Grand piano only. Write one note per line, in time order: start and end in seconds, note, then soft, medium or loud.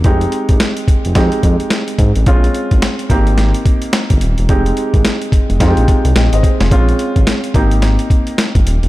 0.05 0.80 G#3 medium
0.05 0.80 C4 medium
0.05 0.80 D#4 medium
0.05 0.80 G4 medium
1.15 1.90 G#3 medium
1.15 1.90 C4 medium
1.15 1.91 D#4 medium
1.15 1.91 G4 medium
2.26 3.01 G#3 medium
2.26 3.02 C4 medium
2.26 3.02 C#4 medium
2.26 3.02 F4 medium
3.10 4.00 A#3 medium
3.10 4.00 C4 medium
3.10 4.00 D#4 medium
3.10 4.01 G4 medium
4.49 5.24 G#3 medium
4.49 5.24 C4 medium
4.49 5.24 D#4 medium
4.49 5.24 G4 medium
5.60 6.35 G#3 medium
5.60 6.35 C4 medium
5.60 6.35 D#4 medium
5.60 5.69 F4 medium
5.67 6.19 G4 medium
6.17 6.32 D#5 soft
6.17 6.32 G5 medium
6.33 6.42 C5 medium
6.33 6.43 D#5 medium
6.44 6.59 G#4 soft
6.44 6.60 C5 medium
6.61 6.71 F4 medium
6.61 6.87 G#4 medium
6.71 7.46 G#3 medium
6.71 7.46 C4 medium
6.71 7.46 C#4 medium
6.71 7.47 F4 medium
7.54 8.45 A#3 medium
7.54 8.45 C4 medium
7.54 8.45 D#4 medium
7.54 8.45 G4 medium